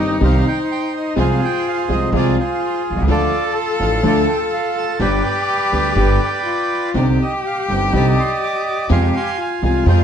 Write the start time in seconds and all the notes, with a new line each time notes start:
Already playing: G1 G2 D#3 G3 C4 D#4 G4
0.00 D#5
0.21 C2 C3 D#3 G3 C4 D#4 G4 C5 F5
0.48 G5
0.72 G5
0.97 D#5
1.16 C2 C3 F3 G#3 C4 F4 G#4 C5
1.20 F5
1.45 G5
1.68 F5
1.89 C2 C3 F3 G#3 C4 F4 G#4 D#5
2.12 C2 C3 F3 G#3 C4 F4 G#4 D5
2.39 F4 G#4 C5
2.90 B1
2.96 C2
3.02 C#2
3.08 D2 D3 F3 A3 D4 F4 A4 D5
3.79 A1 A2 F3 A3 D4 F4 A4 F5
4.03 D2 D3 F3 A3 D4 F4 A4 D5
4.29 G5
4.53 F5
4.77 A5
5.00 G1 G2 D3 G3 B3 D4 G4 B4 D5 G5
5.72 D2 D3 G3 B3 D4 G4 B4
5.96 G1 G2 D3 G3 B3 D4 G4 B4
6.46 F4
6.94 C2 C3 D3 G3 C4 D4 D#4 G4 C5 D5
7.22 D#5
7.46 F5
7.68 G1 G2 D3 G3 C4 D4 D#4 C5 G5
7.93 C2 C3 D3 G3 C4 D4 D#4 C5 D5 D#5 B5
8.20 C6
8.43 D6
8.68 D6
8.90 F2 C3 F3 G#3 C4 F4 G4 G#4 F5 G#5 C6
9.17 C6
9.38 F4 G#5
9.62 C2 C3 F3 G#3 C4 F4 G#4 G#5
9.86 F2 C3 F3 G#3 C4 F4 G#4 C5 G5